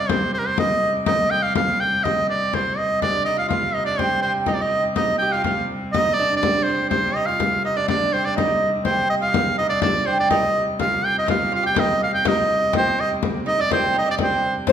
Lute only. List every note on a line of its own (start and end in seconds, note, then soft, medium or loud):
3.02 3.25 D4 medium
3.26 3.36 D#4 medium
3.37 3.47 F4 medium
3.49 3.74 F4 medium
3.74 3.86 D#4 medium
3.86 3.99 D4 medium
3.99 4.22 C4 medium
4.24 4.49 C4 medium
4.48 4.61 D#4 medium
4.62 4.83 D#4 medium
4.96 5.21 D#4 medium
5.22 5.34 G4 medium
5.34 5.46 F4 medium
5.47 5.69 F4 medium
5.95 6.19 D#4 medium
6.19 6.43 D4 medium
6.44 6.68 D4 medium
6.70 6.91 C4 medium
6.94 7.18 C4 medium
7.16 7.28 D#4 medium
7.28 7.64 F4 medium
7.65 7.76 D#4 medium
7.77 7.88 D4 medium
7.89 8.11 D4 medium
8.14 8.26 C4 medium
8.27 8.39 D4 medium
8.39 8.72 D#4 medium
8.86 9.20 C4 medium
9.22 9.58 F4 medium
9.59 9.70 D#4 medium
9.71 9.82 D4 medium
9.84 10.08 D4 medium
10.08 10.32 C4 medium
10.32 10.65 D#4 medium
10.81 11.25 F4 medium
11.27 11.51 F4 medium
11.52 11.65 F4 medium
11.63 11.76 G4 medium
11.75 12.24 D#4 medium
12.25 12.70 D#4 medium
12.73 12.98 C4 medium
12.98 13.09 D#4 medium
13.46 13.58 D#4 medium
13.59 13.71 D4 medium
13.71 13.95 C4 medium
13.93 14.00 D#4 medium
14.01 14.05 D#4 medium
14.06 14.19 D4 medium
14.18 14.52 C4 medium
14.68 14.72 C4 medium